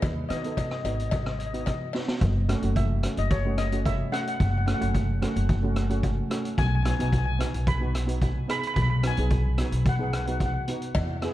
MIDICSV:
0, 0, Header, 1, 5, 480
1, 0, Start_track
1, 0, Tempo, 545951
1, 25, Time_signature, 4, 2, 24, 8
1, 9966, End_track
2, 0, Start_track
2, 0, Title_t, "Steel pan"
2, 0, Program_c, 0, 114
2, 0, Note_on_c, 0, 75, 92
2, 243, Note_off_c, 0, 75, 0
2, 253, Note_on_c, 0, 75, 79
2, 310, Note_off_c, 0, 75, 0
2, 320, Note_on_c, 0, 75, 55
2, 363, Note_off_c, 0, 75, 0
2, 374, Note_on_c, 0, 75, 54
2, 445, Note_off_c, 0, 75, 0
2, 456, Note_on_c, 0, 75, 49
2, 489, Note_off_c, 0, 75, 0
2, 500, Note_on_c, 0, 75, 53
2, 569, Note_off_c, 0, 75, 0
2, 580, Note_on_c, 0, 75, 45
2, 630, Note_off_c, 0, 75, 0
2, 641, Note_on_c, 0, 75, 55
2, 699, Note_off_c, 0, 75, 0
2, 709, Note_on_c, 0, 75, 46
2, 765, Note_off_c, 0, 75, 0
2, 775, Note_on_c, 0, 75, 53
2, 823, Note_off_c, 0, 75, 0
2, 833, Note_on_c, 0, 75, 47
2, 889, Note_off_c, 0, 75, 0
2, 899, Note_on_c, 0, 75, 51
2, 953, Note_off_c, 0, 75, 0
2, 964, Note_on_c, 0, 75, 45
2, 1011, Note_off_c, 0, 75, 0
2, 1021, Note_on_c, 0, 75, 50
2, 1079, Note_off_c, 0, 75, 0
2, 1089, Note_on_c, 0, 75, 46
2, 1146, Note_off_c, 0, 75, 0
2, 1157, Note_on_c, 0, 75, 52
2, 1212, Note_off_c, 0, 75, 0
2, 1222, Note_on_c, 0, 75, 49
2, 1276, Note_off_c, 0, 75, 0
2, 1287, Note_on_c, 0, 75, 58
2, 1342, Note_off_c, 0, 75, 0
2, 1352, Note_on_c, 0, 75, 47
2, 1402, Note_off_c, 0, 75, 0
2, 1413, Note_on_c, 0, 75, 52
2, 1486, Note_off_c, 0, 75, 0
2, 1496, Note_on_c, 0, 75, 57
2, 1566, Note_off_c, 0, 75, 0
2, 2431, Note_on_c, 0, 76, 79
2, 2801, Note_on_c, 0, 75, 84
2, 2804, Note_off_c, 0, 76, 0
2, 2906, Note_off_c, 0, 75, 0
2, 2916, Note_on_c, 0, 73, 85
2, 3148, Note_on_c, 0, 75, 89
2, 3159, Note_off_c, 0, 73, 0
2, 3390, Note_on_c, 0, 76, 99
2, 3395, Note_off_c, 0, 75, 0
2, 3625, Note_on_c, 0, 78, 92
2, 3637, Note_off_c, 0, 76, 0
2, 3689, Note_off_c, 0, 78, 0
2, 3702, Note_on_c, 0, 78, 71
2, 3756, Note_off_c, 0, 78, 0
2, 3766, Note_on_c, 0, 78, 73
2, 3811, Note_off_c, 0, 78, 0
2, 3822, Note_on_c, 0, 78, 59
2, 3884, Note_off_c, 0, 78, 0
2, 3908, Note_on_c, 0, 78, 63
2, 3948, Note_off_c, 0, 78, 0
2, 3958, Note_on_c, 0, 78, 61
2, 4016, Note_off_c, 0, 78, 0
2, 4027, Note_on_c, 0, 78, 71
2, 4084, Note_off_c, 0, 78, 0
2, 4100, Note_on_c, 0, 78, 62
2, 4155, Note_off_c, 0, 78, 0
2, 4170, Note_on_c, 0, 78, 68
2, 4222, Note_off_c, 0, 78, 0
2, 4232, Note_on_c, 0, 78, 72
2, 4286, Note_off_c, 0, 78, 0
2, 5789, Note_on_c, 0, 80, 103
2, 5851, Note_off_c, 0, 80, 0
2, 5864, Note_on_c, 0, 80, 77
2, 5922, Note_off_c, 0, 80, 0
2, 5937, Note_on_c, 0, 80, 80
2, 5989, Note_off_c, 0, 80, 0
2, 6005, Note_on_c, 0, 80, 68
2, 6056, Note_off_c, 0, 80, 0
2, 6069, Note_on_c, 0, 80, 77
2, 6102, Note_off_c, 0, 80, 0
2, 6112, Note_on_c, 0, 80, 62
2, 6162, Note_off_c, 0, 80, 0
2, 6173, Note_on_c, 0, 80, 73
2, 6220, Note_off_c, 0, 80, 0
2, 6230, Note_on_c, 0, 80, 62
2, 6299, Note_off_c, 0, 80, 0
2, 6316, Note_on_c, 0, 80, 72
2, 6369, Note_off_c, 0, 80, 0
2, 6380, Note_on_c, 0, 80, 73
2, 6440, Note_off_c, 0, 80, 0
2, 6753, Note_on_c, 0, 83, 101
2, 7436, Note_off_c, 0, 83, 0
2, 7479, Note_on_c, 0, 83, 102
2, 7543, Note_off_c, 0, 83, 0
2, 7554, Note_on_c, 0, 83, 82
2, 7613, Note_off_c, 0, 83, 0
2, 7625, Note_on_c, 0, 83, 93
2, 7674, Note_off_c, 0, 83, 0
2, 7685, Note_on_c, 0, 83, 81
2, 7742, Note_off_c, 0, 83, 0
2, 7755, Note_on_c, 0, 83, 90
2, 7812, Note_off_c, 0, 83, 0
2, 7824, Note_on_c, 0, 83, 75
2, 7878, Note_off_c, 0, 83, 0
2, 7977, Note_on_c, 0, 80, 93
2, 8648, Note_off_c, 0, 80, 0
2, 8695, Note_on_c, 0, 78, 75
2, 8745, Note_off_c, 0, 78, 0
2, 8755, Note_on_c, 0, 78, 49
2, 8808, Note_off_c, 0, 78, 0
2, 8821, Note_on_c, 0, 78, 59
2, 8872, Note_off_c, 0, 78, 0
2, 8886, Note_on_c, 0, 78, 49
2, 8938, Note_off_c, 0, 78, 0
2, 8959, Note_on_c, 0, 78, 52
2, 9008, Note_off_c, 0, 78, 0
2, 9022, Note_on_c, 0, 78, 43
2, 9063, Note_off_c, 0, 78, 0
2, 9074, Note_on_c, 0, 78, 48
2, 9129, Note_off_c, 0, 78, 0
2, 9138, Note_on_c, 0, 78, 43
2, 9184, Note_off_c, 0, 78, 0
2, 9195, Note_on_c, 0, 78, 56
2, 9257, Note_off_c, 0, 78, 0
2, 9267, Note_on_c, 0, 78, 56
2, 9324, Note_off_c, 0, 78, 0
2, 9966, End_track
3, 0, Start_track
3, 0, Title_t, "Steel pan"
3, 0, Program_c, 1, 114
3, 268, Note_on_c, 1, 59, 69
3, 283, Note_on_c, 1, 63, 61
3, 285, Note_on_c, 1, 66, 75
3, 341, Note_off_c, 1, 59, 0
3, 348, Note_off_c, 1, 63, 0
3, 349, Note_off_c, 1, 66, 0
3, 394, Note_on_c, 1, 59, 71
3, 399, Note_on_c, 1, 63, 59
3, 402, Note_on_c, 1, 69, 76
3, 607, Note_off_c, 1, 59, 0
3, 610, Note_off_c, 1, 63, 0
3, 611, Note_off_c, 1, 69, 0
3, 747, Note_on_c, 1, 59, 61
3, 751, Note_on_c, 1, 66, 70
3, 755, Note_on_c, 1, 63, 58
3, 1110, Note_off_c, 1, 59, 0
3, 1113, Note_off_c, 1, 66, 0
3, 1114, Note_off_c, 1, 63, 0
3, 1350, Note_on_c, 1, 59, 62
3, 1352, Note_on_c, 1, 63, 57
3, 1355, Note_on_c, 1, 66, 69
3, 1566, Note_off_c, 1, 59, 0
3, 1567, Note_off_c, 1, 63, 0
3, 1568, Note_off_c, 1, 66, 0
3, 1710, Note_on_c, 1, 59, 72
3, 1717, Note_on_c, 1, 63, 68
3, 1720, Note_on_c, 1, 66, 82
3, 1949, Note_off_c, 1, 59, 0
3, 1953, Note_off_c, 1, 63, 0
3, 1954, Note_off_c, 1, 66, 0
3, 2183, Note_on_c, 1, 57, 87
3, 2187, Note_on_c, 1, 61, 84
3, 2193, Note_on_c, 1, 66, 95
3, 2260, Note_off_c, 1, 57, 0
3, 2261, Note_off_c, 1, 61, 0
3, 2265, Note_off_c, 1, 66, 0
3, 2311, Note_on_c, 1, 57, 76
3, 2316, Note_on_c, 1, 61, 66
3, 2319, Note_on_c, 1, 66, 80
3, 2527, Note_off_c, 1, 57, 0
3, 2529, Note_off_c, 1, 61, 0
3, 2531, Note_off_c, 1, 66, 0
3, 2670, Note_on_c, 1, 57, 68
3, 2678, Note_on_c, 1, 61, 63
3, 2681, Note_on_c, 1, 66, 77
3, 2886, Note_off_c, 1, 57, 0
3, 2890, Note_off_c, 1, 61, 0
3, 2892, Note_off_c, 1, 66, 0
3, 3033, Note_on_c, 1, 57, 74
3, 3038, Note_on_c, 1, 61, 65
3, 3047, Note_on_c, 1, 66, 84
3, 3174, Note_off_c, 1, 57, 0
3, 3176, Note_off_c, 1, 61, 0
3, 3181, Note_off_c, 1, 66, 0
3, 3266, Note_on_c, 1, 57, 73
3, 3275, Note_on_c, 1, 61, 69
3, 3280, Note_on_c, 1, 66, 81
3, 3484, Note_off_c, 1, 57, 0
3, 3489, Note_off_c, 1, 61, 0
3, 3491, Note_off_c, 1, 66, 0
3, 3621, Note_on_c, 1, 57, 69
3, 3624, Note_on_c, 1, 61, 66
3, 3632, Note_on_c, 1, 66, 78
3, 3914, Note_off_c, 1, 57, 0
3, 3916, Note_off_c, 1, 61, 0
3, 3919, Note_off_c, 1, 66, 0
3, 4104, Note_on_c, 1, 57, 77
3, 4108, Note_on_c, 1, 61, 68
3, 4115, Note_on_c, 1, 66, 83
3, 4180, Note_off_c, 1, 57, 0
3, 4182, Note_off_c, 1, 61, 0
3, 4186, Note_off_c, 1, 66, 0
3, 4213, Note_on_c, 1, 57, 76
3, 4225, Note_on_c, 1, 61, 71
3, 4230, Note_on_c, 1, 66, 81
3, 4437, Note_off_c, 1, 57, 0
3, 4444, Note_off_c, 1, 61, 0
3, 4446, Note_off_c, 1, 66, 0
3, 4585, Note_on_c, 1, 57, 90
3, 4590, Note_on_c, 1, 61, 78
3, 4597, Note_on_c, 1, 66, 96
3, 4804, Note_off_c, 1, 57, 0
3, 4806, Note_off_c, 1, 61, 0
3, 4809, Note_off_c, 1, 66, 0
3, 4946, Note_on_c, 1, 57, 86
3, 4950, Note_on_c, 1, 61, 80
3, 4962, Note_on_c, 1, 66, 93
3, 5090, Note_off_c, 1, 57, 0
3, 5092, Note_off_c, 1, 61, 0
3, 5098, Note_off_c, 1, 66, 0
3, 5182, Note_on_c, 1, 57, 91
3, 5187, Note_on_c, 1, 61, 84
3, 5193, Note_on_c, 1, 66, 91
3, 5402, Note_off_c, 1, 57, 0
3, 5405, Note_off_c, 1, 61, 0
3, 5408, Note_off_c, 1, 66, 0
3, 5540, Note_on_c, 1, 57, 84
3, 5548, Note_on_c, 1, 61, 79
3, 5553, Note_on_c, 1, 66, 96
3, 5784, Note_off_c, 1, 57, 0
3, 5788, Note_off_c, 1, 61, 0
3, 5791, Note_off_c, 1, 66, 0
3, 6025, Note_on_c, 1, 59, 79
3, 6026, Note_on_c, 1, 63, 70
3, 6034, Note_on_c, 1, 66, 85
3, 6101, Note_off_c, 1, 59, 0
3, 6101, Note_off_c, 1, 63, 0
3, 6105, Note_off_c, 1, 66, 0
3, 6145, Note_on_c, 1, 59, 76
3, 6150, Note_on_c, 1, 63, 74
3, 6159, Note_on_c, 1, 66, 85
3, 6364, Note_off_c, 1, 59, 0
3, 6366, Note_off_c, 1, 63, 0
3, 6371, Note_off_c, 1, 66, 0
3, 6494, Note_on_c, 1, 59, 71
3, 6504, Note_on_c, 1, 63, 66
3, 6513, Note_on_c, 1, 66, 80
3, 6718, Note_off_c, 1, 59, 0
3, 6723, Note_off_c, 1, 63, 0
3, 6727, Note_off_c, 1, 66, 0
3, 6860, Note_on_c, 1, 59, 72
3, 6865, Note_on_c, 1, 63, 68
3, 6875, Note_on_c, 1, 66, 86
3, 7007, Note_off_c, 1, 59, 0
3, 7010, Note_off_c, 1, 63, 0
3, 7015, Note_off_c, 1, 66, 0
3, 7092, Note_on_c, 1, 59, 78
3, 7101, Note_on_c, 1, 63, 68
3, 7104, Note_on_c, 1, 66, 80
3, 7317, Note_off_c, 1, 59, 0
3, 7322, Note_off_c, 1, 63, 0
3, 7324, Note_off_c, 1, 66, 0
3, 7455, Note_on_c, 1, 59, 76
3, 7462, Note_on_c, 1, 63, 70
3, 7468, Note_on_c, 1, 68, 83
3, 7751, Note_off_c, 1, 59, 0
3, 7755, Note_off_c, 1, 63, 0
3, 7758, Note_off_c, 1, 68, 0
3, 7949, Note_on_c, 1, 59, 72
3, 7950, Note_on_c, 1, 63, 69
3, 7957, Note_on_c, 1, 66, 79
3, 8023, Note_off_c, 1, 59, 0
3, 8024, Note_off_c, 1, 63, 0
3, 8027, Note_off_c, 1, 66, 0
3, 8071, Note_on_c, 1, 59, 75
3, 8076, Note_on_c, 1, 63, 71
3, 8082, Note_on_c, 1, 68, 86
3, 8287, Note_off_c, 1, 59, 0
3, 8289, Note_off_c, 1, 63, 0
3, 8293, Note_off_c, 1, 68, 0
3, 8433, Note_on_c, 1, 59, 71
3, 8435, Note_on_c, 1, 63, 66
3, 8444, Note_on_c, 1, 66, 77
3, 8648, Note_off_c, 1, 59, 0
3, 8649, Note_off_c, 1, 63, 0
3, 8653, Note_off_c, 1, 66, 0
3, 8780, Note_on_c, 1, 59, 68
3, 8785, Note_on_c, 1, 63, 69
3, 8792, Note_on_c, 1, 68, 82
3, 8928, Note_off_c, 1, 59, 0
3, 8930, Note_off_c, 1, 63, 0
3, 8934, Note_off_c, 1, 68, 0
3, 9032, Note_on_c, 1, 59, 72
3, 9038, Note_on_c, 1, 63, 68
3, 9043, Note_on_c, 1, 66, 78
3, 9248, Note_off_c, 1, 59, 0
3, 9251, Note_off_c, 1, 63, 0
3, 9253, Note_off_c, 1, 66, 0
3, 9388, Note_on_c, 1, 59, 71
3, 9399, Note_on_c, 1, 63, 65
3, 9400, Note_on_c, 1, 66, 76
3, 9629, Note_off_c, 1, 59, 0
3, 9635, Note_off_c, 1, 63, 0
3, 9635, Note_off_c, 1, 66, 0
3, 9876, Note_on_c, 1, 59, 85
3, 9882, Note_on_c, 1, 64, 82
3, 9888, Note_on_c, 1, 68, 102
3, 9947, Note_off_c, 1, 59, 0
3, 9950, Note_off_c, 1, 64, 0
3, 9953, Note_off_c, 1, 68, 0
3, 9966, End_track
4, 0, Start_track
4, 0, Title_t, "Upright bass"
4, 0, Program_c, 2, 32
4, 22, Note_on_c, 2, 39, 103
4, 208, Note_off_c, 2, 39, 0
4, 263, Note_on_c, 2, 51, 78
4, 449, Note_off_c, 2, 51, 0
4, 741, Note_on_c, 2, 32, 76
4, 1481, Note_off_c, 2, 32, 0
4, 1944, Note_on_c, 2, 30, 104
4, 2225, Note_off_c, 2, 30, 0
4, 2305, Note_on_c, 2, 30, 91
4, 2676, Note_off_c, 2, 30, 0
4, 2790, Note_on_c, 2, 30, 79
4, 3527, Note_off_c, 2, 30, 0
4, 3869, Note_on_c, 2, 30, 110
4, 4147, Note_off_c, 2, 30, 0
4, 4230, Note_on_c, 2, 30, 91
4, 4599, Note_off_c, 2, 30, 0
4, 4712, Note_on_c, 2, 30, 92
4, 5448, Note_off_c, 2, 30, 0
4, 5786, Note_on_c, 2, 35, 116
4, 6065, Note_off_c, 2, 35, 0
4, 6153, Note_on_c, 2, 35, 93
4, 6520, Note_off_c, 2, 35, 0
4, 6628, Note_on_c, 2, 35, 81
4, 7366, Note_off_c, 2, 35, 0
4, 7702, Note_on_c, 2, 35, 112
4, 7983, Note_off_c, 2, 35, 0
4, 8068, Note_on_c, 2, 35, 92
4, 8438, Note_off_c, 2, 35, 0
4, 8543, Note_on_c, 2, 35, 87
4, 9284, Note_off_c, 2, 35, 0
4, 9626, Note_on_c, 2, 40, 113
4, 9906, Note_off_c, 2, 40, 0
4, 9966, End_track
5, 0, Start_track
5, 0, Title_t, "Drums"
5, 20, Note_on_c, 9, 56, 80
5, 23, Note_on_c, 9, 36, 99
5, 23, Note_on_c, 9, 42, 50
5, 108, Note_off_c, 9, 56, 0
5, 111, Note_off_c, 9, 36, 0
5, 111, Note_off_c, 9, 42, 0
5, 264, Note_on_c, 9, 37, 76
5, 264, Note_on_c, 9, 42, 72
5, 352, Note_off_c, 9, 37, 0
5, 352, Note_off_c, 9, 42, 0
5, 388, Note_on_c, 9, 42, 53
5, 476, Note_off_c, 9, 42, 0
5, 503, Note_on_c, 9, 36, 75
5, 504, Note_on_c, 9, 42, 54
5, 507, Note_on_c, 9, 56, 69
5, 591, Note_off_c, 9, 36, 0
5, 592, Note_off_c, 9, 42, 0
5, 595, Note_off_c, 9, 56, 0
5, 625, Note_on_c, 9, 37, 71
5, 713, Note_off_c, 9, 37, 0
5, 746, Note_on_c, 9, 42, 70
5, 746, Note_on_c, 9, 56, 64
5, 834, Note_off_c, 9, 42, 0
5, 834, Note_off_c, 9, 56, 0
5, 875, Note_on_c, 9, 42, 53
5, 963, Note_off_c, 9, 42, 0
5, 979, Note_on_c, 9, 56, 72
5, 984, Note_on_c, 9, 42, 51
5, 985, Note_on_c, 9, 36, 91
5, 1067, Note_off_c, 9, 56, 0
5, 1072, Note_off_c, 9, 42, 0
5, 1073, Note_off_c, 9, 36, 0
5, 1109, Note_on_c, 9, 37, 81
5, 1197, Note_off_c, 9, 37, 0
5, 1228, Note_on_c, 9, 42, 69
5, 1316, Note_off_c, 9, 42, 0
5, 1354, Note_on_c, 9, 42, 51
5, 1442, Note_off_c, 9, 42, 0
5, 1460, Note_on_c, 9, 56, 64
5, 1467, Note_on_c, 9, 36, 75
5, 1467, Note_on_c, 9, 37, 82
5, 1467, Note_on_c, 9, 42, 54
5, 1548, Note_off_c, 9, 56, 0
5, 1555, Note_off_c, 9, 36, 0
5, 1555, Note_off_c, 9, 37, 0
5, 1555, Note_off_c, 9, 42, 0
5, 1699, Note_on_c, 9, 56, 68
5, 1709, Note_on_c, 9, 38, 51
5, 1786, Note_off_c, 9, 56, 0
5, 1796, Note_off_c, 9, 38, 0
5, 1830, Note_on_c, 9, 38, 72
5, 1918, Note_off_c, 9, 38, 0
5, 1944, Note_on_c, 9, 42, 59
5, 1946, Note_on_c, 9, 36, 105
5, 2032, Note_off_c, 9, 42, 0
5, 2034, Note_off_c, 9, 36, 0
5, 2189, Note_on_c, 9, 37, 87
5, 2189, Note_on_c, 9, 42, 88
5, 2277, Note_off_c, 9, 37, 0
5, 2277, Note_off_c, 9, 42, 0
5, 2308, Note_on_c, 9, 42, 62
5, 2396, Note_off_c, 9, 42, 0
5, 2427, Note_on_c, 9, 36, 82
5, 2427, Note_on_c, 9, 42, 68
5, 2514, Note_off_c, 9, 36, 0
5, 2515, Note_off_c, 9, 42, 0
5, 2665, Note_on_c, 9, 37, 80
5, 2665, Note_on_c, 9, 42, 86
5, 2753, Note_off_c, 9, 37, 0
5, 2753, Note_off_c, 9, 42, 0
5, 2789, Note_on_c, 9, 42, 66
5, 2877, Note_off_c, 9, 42, 0
5, 2907, Note_on_c, 9, 42, 61
5, 2908, Note_on_c, 9, 36, 115
5, 2995, Note_off_c, 9, 42, 0
5, 2996, Note_off_c, 9, 36, 0
5, 3145, Note_on_c, 9, 37, 79
5, 3145, Note_on_c, 9, 42, 88
5, 3233, Note_off_c, 9, 37, 0
5, 3233, Note_off_c, 9, 42, 0
5, 3272, Note_on_c, 9, 42, 66
5, 3360, Note_off_c, 9, 42, 0
5, 3389, Note_on_c, 9, 36, 86
5, 3392, Note_on_c, 9, 42, 61
5, 3477, Note_off_c, 9, 36, 0
5, 3480, Note_off_c, 9, 42, 0
5, 3635, Note_on_c, 9, 37, 78
5, 3635, Note_on_c, 9, 42, 84
5, 3723, Note_off_c, 9, 37, 0
5, 3723, Note_off_c, 9, 42, 0
5, 3758, Note_on_c, 9, 42, 56
5, 3846, Note_off_c, 9, 42, 0
5, 3870, Note_on_c, 9, 36, 102
5, 3870, Note_on_c, 9, 42, 63
5, 3958, Note_off_c, 9, 36, 0
5, 3958, Note_off_c, 9, 42, 0
5, 4110, Note_on_c, 9, 37, 89
5, 4110, Note_on_c, 9, 42, 75
5, 4198, Note_off_c, 9, 37, 0
5, 4198, Note_off_c, 9, 42, 0
5, 4233, Note_on_c, 9, 42, 60
5, 4321, Note_off_c, 9, 42, 0
5, 4348, Note_on_c, 9, 36, 90
5, 4350, Note_on_c, 9, 42, 59
5, 4436, Note_off_c, 9, 36, 0
5, 4438, Note_off_c, 9, 42, 0
5, 4591, Note_on_c, 9, 37, 79
5, 4591, Note_on_c, 9, 42, 78
5, 4679, Note_off_c, 9, 37, 0
5, 4679, Note_off_c, 9, 42, 0
5, 4715, Note_on_c, 9, 42, 61
5, 4803, Note_off_c, 9, 42, 0
5, 4828, Note_on_c, 9, 36, 106
5, 4828, Note_on_c, 9, 42, 58
5, 4916, Note_off_c, 9, 36, 0
5, 4916, Note_off_c, 9, 42, 0
5, 5065, Note_on_c, 9, 37, 84
5, 5065, Note_on_c, 9, 42, 75
5, 5153, Note_off_c, 9, 37, 0
5, 5153, Note_off_c, 9, 42, 0
5, 5191, Note_on_c, 9, 42, 59
5, 5279, Note_off_c, 9, 42, 0
5, 5303, Note_on_c, 9, 42, 62
5, 5305, Note_on_c, 9, 36, 81
5, 5391, Note_off_c, 9, 42, 0
5, 5393, Note_off_c, 9, 36, 0
5, 5546, Note_on_c, 9, 37, 79
5, 5546, Note_on_c, 9, 42, 82
5, 5634, Note_off_c, 9, 37, 0
5, 5634, Note_off_c, 9, 42, 0
5, 5672, Note_on_c, 9, 42, 59
5, 5760, Note_off_c, 9, 42, 0
5, 5784, Note_on_c, 9, 36, 103
5, 5787, Note_on_c, 9, 42, 63
5, 5872, Note_off_c, 9, 36, 0
5, 5875, Note_off_c, 9, 42, 0
5, 6025, Note_on_c, 9, 37, 86
5, 6025, Note_on_c, 9, 42, 87
5, 6112, Note_off_c, 9, 37, 0
5, 6112, Note_off_c, 9, 42, 0
5, 6154, Note_on_c, 9, 42, 63
5, 6242, Note_off_c, 9, 42, 0
5, 6265, Note_on_c, 9, 36, 84
5, 6267, Note_on_c, 9, 42, 60
5, 6353, Note_off_c, 9, 36, 0
5, 6355, Note_off_c, 9, 42, 0
5, 6509, Note_on_c, 9, 37, 78
5, 6509, Note_on_c, 9, 42, 88
5, 6597, Note_off_c, 9, 37, 0
5, 6597, Note_off_c, 9, 42, 0
5, 6631, Note_on_c, 9, 42, 66
5, 6719, Note_off_c, 9, 42, 0
5, 6744, Note_on_c, 9, 36, 108
5, 6746, Note_on_c, 9, 42, 65
5, 6832, Note_off_c, 9, 36, 0
5, 6834, Note_off_c, 9, 42, 0
5, 6987, Note_on_c, 9, 37, 86
5, 6987, Note_on_c, 9, 42, 86
5, 7075, Note_off_c, 9, 37, 0
5, 7075, Note_off_c, 9, 42, 0
5, 7109, Note_on_c, 9, 42, 65
5, 7197, Note_off_c, 9, 42, 0
5, 7223, Note_on_c, 9, 36, 87
5, 7223, Note_on_c, 9, 42, 65
5, 7311, Note_off_c, 9, 36, 0
5, 7311, Note_off_c, 9, 42, 0
5, 7468, Note_on_c, 9, 37, 78
5, 7468, Note_on_c, 9, 42, 83
5, 7556, Note_off_c, 9, 37, 0
5, 7556, Note_off_c, 9, 42, 0
5, 7590, Note_on_c, 9, 42, 59
5, 7678, Note_off_c, 9, 42, 0
5, 7703, Note_on_c, 9, 42, 61
5, 7704, Note_on_c, 9, 36, 103
5, 7791, Note_off_c, 9, 42, 0
5, 7792, Note_off_c, 9, 36, 0
5, 7942, Note_on_c, 9, 37, 85
5, 7942, Note_on_c, 9, 42, 82
5, 8030, Note_off_c, 9, 37, 0
5, 8030, Note_off_c, 9, 42, 0
5, 8061, Note_on_c, 9, 42, 63
5, 8149, Note_off_c, 9, 42, 0
5, 8180, Note_on_c, 9, 42, 58
5, 8183, Note_on_c, 9, 36, 87
5, 8268, Note_off_c, 9, 42, 0
5, 8271, Note_off_c, 9, 36, 0
5, 8422, Note_on_c, 9, 37, 82
5, 8422, Note_on_c, 9, 42, 80
5, 8510, Note_off_c, 9, 37, 0
5, 8510, Note_off_c, 9, 42, 0
5, 8547, Note_on_c, 9, 42, 63
5, 8635, Note_off_c, 9, 42, 0
5, 8666, Note_on_c, 9, 36, 101
5, 8667, Note_on_c, 9, 42, 62
5, 8754, Note_off_c, 9, 36, 0
5, 8755, Note_off_c, 9, 42, 0
5, 8908, Note_on_c, 9, 37, 89
5, 8908, Note_on_c, 9, 42, 76
5, 8995, Note_off_c, 9, 37, 0
5, 8995, Note_off_c, 9, 42, 0
5, 9032, Note_on_c, 9, 42, 60
5, 9120, Note_off_c, 9, 42, 0
5, 9146, Note_on_c, 9, 36, 81
5, 9146, Note_on_c, 9, 42, 64
5, 9234, Note_off_c, 9, 36, 0
5, 9234, Note_off_c, 9, 42, 0
5, 9386, Note_on_c, 9, 42, 84
5, 9474, Note_off_c, 9, 42, 0
5, 9510, Note_on_c, 9, 42, 57
5, 9598, Note_off_c, 9, 42, 0
5, 9624, Note_on_c, 9, 42, 60
5, 9624, Note_on_c, 9, 56, 103
5, 9626, Note_on_c, 9, 36, 106
5, 9712, Note_off_c, 9, 42, 0
5, 9712, Note_off_c, 9, 56, 0
5, 9714, Note_off_c, 9, 36, 0
5, 9865, Note_on_c, 9, 37, 84
5, 9865, Note_on_c, 9, 42, 79
5, 9953, Note_off_c, 9, 37, 0
5, 9953, Note_off_c, 9, 42, 0
5, 9966, End_track
0, 0, End_of_file